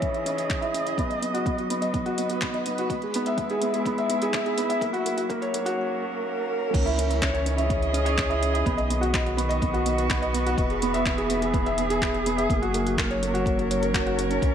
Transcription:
Already playing: analog synth bass C#2, string quartet E3 C#4 G#4 D#5, felt piano C#4 E4 C#5
0.02 felt piano C#4, kick, closed hi-hat
0.14 felt piano E4, closed hi-hat
0.26 felt piano C#4, closed hi-hat
0.37 felt piano C#5, closed hi-hat
0.49 felt piano C#4, kick, clap, closed hi-hat
0.61 felt piano E4, closed hi-hat
0.74 felt piano C#4, closed hi-hat
0.86 felt piano E4, closed hi-hat
0.97 string quartet F#3, felt piano B3, kick, closed hi-hat
1.10 felt piano D#5, closed hi-hat
1.18 string quartet B3, felt piano B3
1.23 closed hi-hat
1.34 felt piano F#4, closed hi-hat
1.46 felt piano B3, kick, closed hi-hat
1.58 felt piano F#4, closed hi-hat
1.64 string quartet B4
1.70 felt piano B3, closed hi-hat
1.82 felt piano D#5, closed hi-hat
1.94 felt piano B3, kick, closed hi-hat
2.06 felt piano F#4, closed hi-hat
2.18 felt piano B3, closed hi-hat
2.30 felt piano F#4, closed hi-hat
2.41 felt piano B3, kick, clap, closed hi-hat
2.54 felt piano D#5, closed hi-hat
2.66 felt piano B3, closed hi-hat
2.78 felt piano F#4, closed hi-hat
2.89 string quartet G#3, felt piano B3, kick, closed hi-hat
3.02 felt piano G#4, closed hi-hat
3.14 felt piano B3, closed hi-hat
3.20 string quartet E4
3.26 felt piano E5, closed hi-hat
3.38 felt piano B3, kick, closed hi-hat
3.50 felt piano G#4, closed hi-hat
3.62 felt piano B3, closed hi-hat
3.74 felt piano G#4, closed hi-hat
3.86 felt piano B3, kick, closed hi-hat
3.98 felt piano E5, closed hi-hat
4.10 felt piano B3, closed hi-hat
4.22 felt piano G#4, closed hi-hat
4.33 felt piano B3, kick, clap, closed hi-hat
4.46 felt piano G#4, closed hi-hat
4.58 felt piano B3, closed hi-hat
4.69 felt piano E5, closed hi-hat
4.81 string quartet F#3, felt piano A#3, kick, closed hi-hat
4.93 felt piano F#4, closed hi-hat
5.05 felt piano A#3, closed hi-hat
5.17 felt piano F#4, closed hi-hat
5.25 string quartet A#3
5.29 felt piano A#3, kick, closed hi-hat
5.42 felt piano C#5, closed hi-hat
5.54 felt piano A#3, closed hi-hat
5.66 string quartet C#4 A#4, felt piano F#4, closed hi-hat
6.74 analog synth bass C#2, string quartet E3, felt piano C#4, kick, closed hi-hat, crash
6.86 felt piano E4, closed hi-hat
6.98 felt piano C#4, closed hi-hat
7.10 felt piano E4, closed hi-hat
7.22 felt piano C#4, kick, clap, closed hi-hat
7.34 felt piano C#5, closed hi-hat
7.41 string quartet D#5
7.46 felt piano C#4, closed hi-hat
7.57 felt piano E4, string quartet G#4, closed hi-hat
7.69 felt piano C#4, kick, closed hi-hat
7.81 felt piano E4, closed hi-hat
7.93 felt piano C#4, closed hi-hat
8.05 felt piano C#5, closed hi-hat
8.18 felt piano C#4, kick, clap, closed hi-hat
8.30 felt piano E4, closed hi-hat
8.42 felt piano C#4, closed hi-hat
8.54 felt piano E4, closed hi-hat
8.66 analog synth bass B1, string quartet D#3, felt piano B3, kick, closed hi-hat
8.77 felt piano D#5, closed hi-hat
8.89 felt piano B3, string quartet B3, closed hi-hat
9.01 felt piano F#4, closed hi-hat
9.07 string quartet F#4 B4
9.14 felt piano B3, kick, clap, closed hi-hat
9.26 felt piano F#4, closed hi-hat
9.37 felt piano B3, closed hi-hat
9.49 felt piano D#5, closed hi-hat
9.62 felt piano B3, kick, closed hi-hat
9.73 felt piano F#4, closed hi-hat
9.86 felt piano B3, closed hi-hat
9.98 felt piano F#4, closed hi-hat
10.10 felt piano B3, kick, clap, closed hi-hat
10.22 felt piano D#5, closed hi-hat
10.34 felt piano B3, closed hi-hat
10.46 felt piano F#4, closed hi-hat
10.58 analog synth bass E1, string quartet E3, felt piano B3, kick, closed hi-hat
10.70 felt piano G#4, closed hi-hat
10.82 felt piano B3, closed hi-hat
10.94 felt piano E5, closed hi-hat
11.06 felt piano B3, kick, clap, closed hi-hat
11.18 felt piano G#4, closed hi-hat
11.30 felt piano B3, closed hi-hat
11.42 felt piano G#4, string quartet G#4, closed hi-hat
11.54 felt piano B3, kick, closed hi-hat
11.66 felt piano E5, closed hi-hat
11.78 felt piano B3, closed hi-hat
11.90 felt piano G#4, closed hi-hat
12.02 felt piano B3, kick, clap, closed hi-hat
12.14 felt piano G#4, closed hi-hat
12.26 felt piano B3, closed hi-hat
12.38 felt piano E5, closed hi-hat
12.49 analog synth bass F#1, string quartet F#3, felt piano A#3, kick, closed hi-hat
12.62 felt piano F#4, closed hi-hat
12.74 felt piano A#3, closed hi-hat
12.86 felt piano F#4, closed hi-hat
12.98 felt piano A#3, string quartet C#4, kick, clap, closed hi-hat
13.10 felt piano C#5, closed hi-hat
13.23 felt piano A#3, closed hi-hat
13.27 string quartet A#4
13.34 felt piano F#4, string quartet C#5, closed hi-hat
13.46 felt piano A#3, kick, closed hi-hat
13.59 felt piano F#4, closed hi-hat
13.71 felt piano C#5, closed hi-hat
13.83 felt piano A#4, closed hi-hat
13.94 felt piano F#4, kick, clap, closed hi-hat
14.06 felt piano F#4, closed hi-hat
14.19 felt piano F#4, closed hi-hat
14.30 felt piano C#4, closed hi-hat
14.42 analog synth bass C#2, string quartet E3, felt piano C#4, kick, closed hi-hat

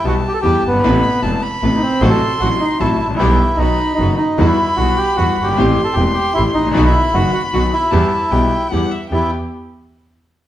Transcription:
0.04 double bass B1, grand piano B1 B2 E3 G3 B3 G4, string section E4 G4 B4, bandoneon F#4, violin A5
0.28 bandoneon G4
0.34 bandoneon A4
0.42 grand piano E2 E3 G3 B3 G4, double bass E2, string section E4 G4 B4, bandoneon G4
0.64 double bass G1, bandoneon B3
0.69 grand piano F#1 G1
0.79 grand piano G#1, violin B5
0.83 double bass A1, grand piano A1 A2 C3 A3 B3 E4, string section C4 A4 B4
1.22 grand piano E1 E2 C3 A3 B3 E4, double bass E1, string section C4 A4 B4, violin A5
1.42 violin B5
1.62 double bass A1, grand piano A1 A2 C3 A3 B3 E4, string section C4 A4 B4
1.76 bandoneon D#4
1.82 bandoneon C4
2.01 double bass A1, grand piano A1 A2 C3 F#3 A3 F#4, string section C4 F#4 A4, violin C6
2.10 bandoneon A4
2.40 double bass A1, grand piano A1 A2 C3 F#3 A3 F#4, string section C4 F#4 A4, bandoneon F#4
2.60 bandoneon D#4
2.79 double bass A1, grand piano A1 A2 C3 F#3 A3 F#4, string section C4 F#4 A4, bandoneon E4, violin A5
2.98 double bass A1, bandoneon E4
3.05 grand piano G#1
3.10 grand piano A1
3.14 grand piano A#1, bandoneon E4
3.19 grand piano B1 B2 E3 G3 B3 G4, double bass B1, string section B3 E4 G4, violin G5
3.57 double bass B1, grand piano B1 B2 D#3 F#3 B3 F#4, string section B3 D#4 F#4, bandoneon D#4, violin B5
3.95 grand piano F#1 F#2 D#3 B3, bandoneon D#4
3.99 double bass F#1, grand piano F#3 F#4, string section B3 D#4 F#4
4.17 bandoneon D#4
4.38 grand piano E2 E3 G3 B3 F#4, double bass E2, string section G3 E4 F#4, violin B5
4.44 bandoneon E4
4.76 grand piano B1 B2 E3 G3 B3 F#4, double bass B1, string section G3 E4 F#4, bandoneon F#4
4.97 bandoneon G4
5.16 double bass E2, grand piano E2 E3 G3 B3 F#4, string section G3 E4 F#4, bandoneon F#4
5.38 double bass G1
5.43 grand piano F#1, bandoneon G4
5.48 grand piano G1
5.53 grand piano G#1
5.58 double bass A1, grand piano A1 A2 E3 A3 C4 G4, string section A3 C4 G4, violin C6
5.84 bandoneon A4
5.93 double bass E1, grand piano E2 E3 A3, bandoneon G4
5.97 grand piano E1 C4 G4, string section A3 C4 G4
6.14 bandoneon G4
6.34 grand piano A1 A2 E3 A3 C4 G4, double bass A1, string section A3 C4 G4, bandoneon E4
6.54 double bass A1, bandoneon D#4
6.61 grand piano G#1
6.66 grand piano A1
6.71 grand piano A#1 B1 B2 D#3 F#3 B3 F#4, string section B3, violin B5
6.75 double bass B1, string section D#4 F#4
6.86 bandoneon E4
7.14 double bass F#1, grand piano F#1 F#2 D#3 F#3 B3 F#4, string section B3 D#4 F#4, bandoneon F#4
7.33 bandoneon F#4
7.53 double bass B1, grand piano B1 B2 D#3 F#3 B3 F#4, string section B3 D#4 F#4, bandoneon F#4
7.73 bandoneon E4
7.91 double bass E2, grand piano E2 E3 G3 B3 G4, string section B3 E4 G4, violin A5
8.31 double bass B1, grand piano B1 B2 E3 G3 B3 G4, string section B3 E4 G4, violin G5
8.72 double bass E2, grand piano E2 E3 G3 B3 G4, string section B3 E4 G4, violin F#5
8.91 violin E5
9.10 double bass E2, grand piano E2 B3 E4 G4, string section B3 E4 G4, bandoneon E4, violin G5

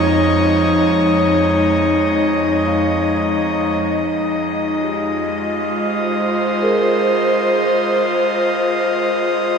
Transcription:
Already playing: analog synth pad F2 G#3 D#4 C#5 D#5, synth drone F3, celesta A#4
1.78 celesta D#5
2.67 celesta F5
3.94 celesta D#4
4.56 analog synth pad F4
4.83 celesta G4
5.69 analog synth pad C5
6.62 celesta G#4 A#4

